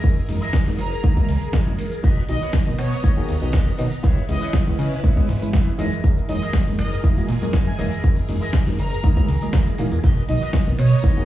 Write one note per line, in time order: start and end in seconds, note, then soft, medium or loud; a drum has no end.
0.00 0.19 F#2 loud
0.00 0.28 E4 medium
0.00 0.29 G#4 medium
0.00 2.02 G#4 medium
0.00 0.29 A#4 medium
0.00 2.00 A#4 medium
0.00 0.29 D#5 medium
0.00 kick loud
0.00 closed hi-hat medium
0.04 shaker medium
0.18 shaker soft
0.28 0.37 F#2 medium
0.28 0.40 E3 medium
0.28 0.40 F#3 medium
0.28 0.40 G#3 medium
0.28 0.40 A#3 medium
0.28 0.40 D#4 medium
0.28 open hi-hat loud
0.41 0.53 E4 medium
0.41 0.54 G#4 medium
0.41 0.54 A#4 medium
0.41 0.54 D#5 medium
0.41 closed hi-hat medium
0.41 shaker medium
0.53 kick loud
0.53 snare loud
0.53 closed hi-hat medium
0.53 shaker medium
0.66 0.74 F#2 medium
0.66 0.77 E3 medium
0.66 0.77 F#3 medium
0.66 0.77 G#3 medium
0.66 0.77 A#3 medium
0.66 0.77 D#4 loud
0.66 muted clean electric guitar stroke soft
0.66 snare soft
0.66 closed hi-hat soft
0.66 shaker soft
0.79 0.94 F#1 loud
0.79 1.49 A#5 loud
0.79 open hi-hat loud
0.92 closed hi-hat medium
0.92 shaker medium
1.03 1.12 D#3 medium
1.03 1.15 E3 loud
1.03 1.15 F#3 medium
1.03 1.15 G#3 medium
1.03 1.15 A#3 medium
1.03 1.15 D#4 loud
1.03 1.28 E4 medium
1.03 1.29 G#4 medium
1.03 1.29 A#4 medium
1.03 1.29 D#5 medium
1.03 kick loud
1.03 closed hi-hat medium
1.03 shaker medium
1.17 1.27 E3 medium
1.17 1.27 F#3 medium
1.17 1.27 G#3 medium
1.17 1.27 A#3 medium
1.17 1.28 F#4 medium
1.17 kick medium
1.17 closed hi-hat soft
1.17 shaker soft
1.29 1.37 C#2 loud
1.29 open hi-hat loud
1.42 1.51 F#2 soft
1.42 closed hi-hat soft
1.42 shaker medium
1.53 1.62 F#2 medium
1.53 1.72 E4 medium
1.53 1.73 G#4 medium
1.53 1.73 A#4 medium
1.53 1.73 D#5 loud
1.53 kick loud
1.53 snare loud
1.53 closed hi-hat medium
1.53 shaker medium
1.67 1.74 F#1 loud
1.67 1.84 E3 medium
1.67 1.84 F#3 medium
1.67 1.84 G#3 medium
1.67 1.84 A#3 medium
1.67 1.84 C#4 medium
1.67 closed hi-hat soft
1.67 shaker soft
1.79 open hi-hat loud
1.91 muted clean electric guitar stroke soft
1.91 closed hi-hat medium
1.91 shaker medium
2.03 2.20 B1 loud
2.03 4.02 B3 medium
2.03 2.22 F#4 loud
2.03 2.23 A#4 loud
2.03 2.23 B4 loud
2.03 4.02 D#5 loud
2.03 2.23 D#5 loud
2.03 4.02 A#5 medium
2.03 kick loud
2.03 closed hi-hat medium
2.03 shaker medium
2.18 shaker soft
2.29 2.37 B1 medium
2.29 2.40 D#3 medium
2.29 2.40 F#3 medium
2.29 2.40 A#3 medium
2.29 2.40 B3 medium
2.29 2.40 D#4 medium
2.29 2.46 D#5 loud
2.29 open hi-hat loud
2.41 2.53 F#4 medium
2.41 2.54 A#4 medium
2.41 2.54 B4 medium
2.41 2.54 C#5 loud
2.41 closed hi-hat soft
2.41 shaker medium
2.53 kick loud
2.53 snare loud
2.53 closed hi-hat medium
2.53 shaker medium
2.66 2.74 B1 medium
2.66 2.77 D#3 medium
2.66 2.77 F#3 medium
2.66 2.77 A#3 medium
2.66 2.77 B3 medium
2.66 2.77 D#4 medium
2.66 muted clean electric guitar stroke soft
2.66 closed hi-hat soft
2.66 shaker soft
2.79 2.95 B2 loud
2.79 3.29 C#5 medium
2.79 finger snap medium
2.79 open hi-hat loud
2.92 closed hi-hat soft
2.92 shaker medium
3.03 3.12 F#1 medium
3.03 3.15 D#3 loud
3.03 3.15 F#3 medium
3.03 3.15 A#3 medium
3.03 3.15 B3 medium
3.03 3.15 D#4 loud
3.03 3.28 F#4 medium
3.03 3.29 A#4 medium
3.03 3.29 B4 medium
3.03 3.29 D#5 medium
3.03 kick loud
3.03 closed hi-hat medium
3.03 shaker medium
3.17 3.27 D#3 medium
3.17 3.27 F#3 medium
3.17 3.27 A#3 medium
3.17 3.27 B3 medium
3.17 3.27 G#4 loud
3.17 closed hi-hat soft
3.17 shaker soft
3.29 3.37 D#2 loud
3.29 open hi-hat loud
3.41 3.71 B1 medium
3.41 3.76 D#3 medium
3.41 3.76 F#3 medium
3.41 3.76 B3 medium
3.41 3.76 D#4 loud
3.41 closed hi-hat soft
3.41 shaker medium
3.53 3.72 F#4 medium
3.53 3.73 A#4 medium
3.53 3.73 B4 medium
3.53 3.73 D#5 medium
3.53 kick loud
3.53 snare loud
3.53 closed hi-hat medium
3.53 shaker medium
3.67 closed hi-hat soft
3.67 shaker soft
3.78 3.87 B2 medium
3.78 3.90 D#3 medium
3.78 3.90 F#3 medium
3.78 3.90 A#3 medium
3.78 3.90 B3 medium
3.78 3.90 D#4 loud
3.78 open hi-hat loud
3.91 muted clean electric guitar stroke soft
3.91 closed hi-hat medium
3.91 shaker medium
4.03 4.20 C#2 loud
4.03 5.77 C#4 medium
4.03 4.22 E4 loud
4.03 5.77 E4 loud
4.03 4.23 G#4 loud
4.03 4.23 B4 loud
4.03 5.77 B4 medium
4.03 4.23 C#5 loud
4.03 kick loud
4.03 closed hi-hat medium
4.03 shaker medium
4.18 shaker soft
4.28 4.37 C#2 medium
4.28 4.40 E3 medium
4.28 4.40 G#3 medium
4.28 4.40 B3 medium
4.28 4.40 C#4 medium
4.28 4.40 E4 medium
4.28 4.99 D#5 loud
4.28 open hi-hat loud
4.41 4.53 E4 medium
4.41 4.54 G#4 medium
4.41 4.54 B4 medium
4.41 4.54 C#5 loud
4.41 closed hi-hat medium
4.41 shaker medium
4.53 kick loud
4.53 snare loud
4.53 closed hi-hat medium
4.53 shaker medium
4.66 4.74 C#2 medium
4.66 4.77 E3 medium
4.66 4.77 G#3 medium
4.66 4.77 B3 medium
4.66 4.77 C#4 medium
4.66 4.77 E4 loud
4.66 muted clean electric guitar stroke soft
4.66 closed hi-hat soft
4.66 shaker soft
4.79 4.94 C#3 loud
4.79 open hi-hat loud
4.92 closed hi-hat medium
4.92 shaker medium
5.03 5.12 A#2 medium
5.03 5.15 E3 medium
5.03 5.15 G#3 medium
5.03 5.15 B3 medium
5.03 5.15 C#4 medium
5.03 5.28 E4 medium
5.03 5.15 E4 loud
5.03 5.29 G#4 medium
5.03 5.29 B4 medium
5.03 5.29 C#5 medium
5.03 kick loud
5.03 closed hi-hat medium
5.03 shaker medium
5.17 5.27 E3 medium
5.17 5.27 G#3 medium
5.17 5.27 B3 medium
5.17 5.27 C#4 medium
5.17 5.27 G#4 medium
5.17 kick medium
5.17 closed hi-hat soft
5.17 shaker soft
5.29 5.37 G#2 medium
5.29 open hi-hat loud
5.42 5.76 E3 medium
5.42 5.76 G#3 medium
5.42 5.76 B3 medium
5.42 5.76 C#4 medium
5.42 5.76 E4 loud
5.42 closed hi-hat medium
5.42 shaker medium
5.53 5.72 E4 medium
5.53 5.73 G#4 medium
5.53 5.73 B4 medium
5.53 5.73 E5 loud
5.53 kick loud
5.53 snare loud
5.53 closed hi-hat medium
5.53 shaker medium
5.67 closed hi-hat soft
5.67 shaker soft
5.78 5.87 F#2 medium
5.78 5.90 E3 loud
5.78 5.90 F#3 medium
5.78 5.90 G#3 medium
5.78 5.90 A#3 medium
5.78 5.90 D#4 loud
5.78 6.28 E4 medium
5.78 6.29 G#4 medium
5.78 10.00 G#4 medium
5.78 6.29 A#4 medium
5.78 10.00 A#4 medium
5.78 6.29 D#5 loud
5.78 open hi-hat loud
5.92 closed hi-hat medium
5.92 shaker medium
6.04 6.20 F#2 loud
6.04 kick loud
6.04 closed hi-hat medium
6.04 shaker medium
6.18 shaker soft
6.28 6.37 F#2 medium
6.28 6.40 E3 medium
6.28 6.40 F#3 medium
6.28 6.40 G#3 medium
6.28 6.40 A#3 medium
6.28 6.40 D#4 loud
6.28 6.46 D#5 loud
6.28 open hi-hat medium
6.41 6.53 E4 medium
6.41 6.54 G#4 medium
6.41 6.54 A#4 medium
6.41 6.54 D#5 medium
6.41 closed hi-hat medium
6.41 shaker medium
6.53 kick loud
6.53 snare loud
6.53 closed hi-hat medium
6.53 shaker medium
6.66 6.74 F#2 medium
6.66 6.77 E3 medium
6.66 6.77 F#3 medium
6.66 6.77 G#3 medium
6.66 6.77 A#3 medium
6.66 6.77 D#4 loud
6.66 muted clean electric guitar stroke soft
6.66 closed hi-hat soft
6.66 shaker soft
6.79 6.94 F#1 loud
6.79 6.96 D#5 loud
6.79 finger snap medium
6.79 open hi-hat loud
6.92 closed hi-hat medium
6.92 shaker medium
7.03 7.12 E2 medium
7.03 7.15 E3 loud
7.03 7.15 F#3 medium
7.03 7.15 G#3 medium
7.03 7.15 A#3 medium
7.03 7.15 D#4 loud
7.03 7.28 E4 medium
7.03 7.29 G#4 medium
7.03 7.29 A#4 medium
7.03 7.29 D#5 loud
7.03 kick loud
7.03 closed hi-hat medium
7.03 shaker medium
7.16 7.27 E3 medium
7.16 7.27 F#3 medium
7.16 7.27 G#3 medium
7.16 7.27 A#3 medium
7.16 7.27 F#4 medium
7.16 closed hi-hat soft
7.16 shaker soft
7.29 7.37 A#2 loud
7.29 open hi-hat medium
7.42 7.71 F#2 loud
7.42 7.76 E3 medium
7.42 7.76 F#3 medium
7.42 7.76 G#3 medium
7.42 7.76 A#3 medium
7.42 7.76 D#5 loud
7.42 closed hi-hat medium
7.42 shaker medium
7.53 7.73 E4 medium
7.53 7.73 G#4 medium
7.53 7.73 A#4 medium
7.53 7.74 D#5 loud
7.53 kick loud
7.53 snare loud
7.53 closed hi-hat medium
7.53 shaker medium
7.67 7.83 G#5 medium
7.67 closed hi-hat soft
7.67 shaker soft
7.78 7.87 F#1 medium
7.78 7.90 E3 medium
7.78 7.90 F#3 medium
7.78 7.90 G#3 medium
7.78 7.90 A#3 medium
7.78 7.90 D#4 loud
7.78 8.28 E4 medium
7.78 8.29 G#4 medium
7.78 8.29 A#4 medium
7.78 8.29 D#5 loud
7.78 open hi-hat loud
7.92 closed hi-hat medium
7.92 shaker medium
8.04 8.20 F#2 loud
8.04 kick loud
8.04 closed hi-hat medium
8.04 shaker medium
8.17 closed hi-hat soft
8.17 shaker soft
8.29 8.37 F#2 medium
8.29 8.40 E3 medium
8.29 8.40 F#3 medium
8.29 8.40 G#3 medium
8.29 8.40 A#3 medium
8.29 8.40 D#4 loud
8.29 open hi-hat loud
8.41 8.53 E4 medium
8.41 8.54 G#4 medium
8.41 8.54 A#4 medium
8.41 8.54 D#5 loud
8.41 closed hi-hat medium
8.41 shaker medium
8.53 kick loud
8.53 snare loud
8.53 closed hi-hat medium
8.53 shaker medium
8.66 8.74 F#2 medium
8.66 8.77 E3 medium
8.66 8.77 F#3 medium
8.66 8.77 G#3 medium
8.66 8.77 A#3 medium
8.66 8.77 D#4 loud
8.66 muted clean electric guitar stroke soft
8.66 snare soft
8.66 closed hi-hat soft
8.66 shaker soft
8.79 8.94 F#1 loud
8.79 9.49 A#5 loud
8.79 open hi-hat loud
8.92 closed hi-hat medium
8.92 shaker medium
9.03 9.12 D#3 medium
9.03 9.15 E3 medium
9.03 9.15 F#3 medium
9.03 9.15 G#3 medium
9.03 9.15 A#3 medium
9.03 9.15 D#4 loud
9.03 9.28 E4 medium
9.03 9.29 G#4 medium
9.03 9.29 A#4 medium
9.03 9.29 D#5 medium
9.03 kick loud
9.03 closed hi-hat medium
9.03 shaker medium
9.17 9.27 E3 medium
9.17 9.27 F#3 medium
9.17 9.27 G#3 medium
9.17 9.27 A#3 medium
9.17 9.27 F#4 medium
9.17 kick medium
9.17 closed hi-hat soft
9.17 shaker soft
9.29 9.37 C#2 medium
9.29 open hi-hat loud
9.42 9.76 E3 medium
9.42 9.76 F#3 medium
9.42 9.76 G#3 medium
9.42 9.76 A#3 medium
9.42 9.76 D#5 loud
9.42 closed hi-hat medium
9.42 shaker medium
9.53 9.72 E4 medium
9.53 9.73 G#4 medium
9.53 9.73 A#4 medium
9.53 9.73 D#5 medium
9.53 kick loud
9.53 snare loud
9.53 closed hi-hat medium
9.53 shaker medium
9.67 closed hi-hat soft
9.67 shaker soft
9.78 9.87 A#2 loud
9.78 9.90 E3 medium
9.78 9.90 F#3 medium
9.78 9.90 G#3 medium
9.78 9.90 A#3 medium
9.78 9.90 D#4 loud
9.78 open hi-hat loud
9.91 9.99 E2 medium
9.91 muted clean electric guitar stroke soft
9.91 closed hi-hat medium
9.91 shaker medium
10.03 10.20 B1 loud
10.03 11.25 B3 medium
10.03 10.23 F#4 loud
10.03 10.23 A#4 loud
10.03 10.23 B4 loud
10.03 11.25 D#5 medium
10.03 10.23 D#5 loud
10.03 11.25 A#5 medium
10.03 kick loud
10.03 closed hi-hat medium
10.03 shaker medium
10.18 shaker soft
10.28 10.37 B1 medium
10.28 10.40 D#3 medium
10.28 10.40 F#3 medium
10.28 10.40 A#3 medium
10.28 10.40 B3 medium
10.28 10.40 D#4 medium
10.28 10.46 D#5 loud
10.28 open hi-hat loud
10.41 10.53 F#4 medium
10.41 10.54 A#4 medium
10.41 10.54 B4 medium
10.41 10.54 D#5 medium
10.41 closed hi-hat medium
10.41 shaker medium
10.53 kick loud
10.53 snare loud
10.53 closed hi-hat medium
10.53 shaker medium
10.66 10.74 B1 medium
10.66 10.77 D#3 medium
10.66 10.77 F#3 medium
10.66 10.77 A#3 medium
10.66 10.77 B3 medium
10.66 10.78 D#4 medium
10.66 muted clean electric guitar stroke soft
10.66 closed hi-hat soft
10.66 shaker soft
10.79 10.95 B2 loud
10.79 11.25 C#5 loud
10.79 finger snap medium
10.79 open hi-hat loud
10.92 closed hi-hat medium
10.92 shaker medium
11.03 11.12 F#1 medium
11.03 11.15 D#3 loud
11.03 11.15 F#3 medium
11.03 11.15 A#3 medium
11.03 11.15 B3 medium
11.03 11.15 D#4 loud
11.03 11.25 F#4 medium
11.03 11.25 A#4 medium
11.03 11.25 B4 medium
11.03 11.25 D#5 loud
11.03 kick loud
11.03 closed hi-hat medium
11.03 shaker medium
11.17 11.25 D#3 medium
11.17 11.25 F#3 medium
11.17 11.25 A#3 medium
11.17 11.25 B3 medium
11.17 11.25 G#4 medium
11.17 closed hi-hat soft
11.17 shaker soft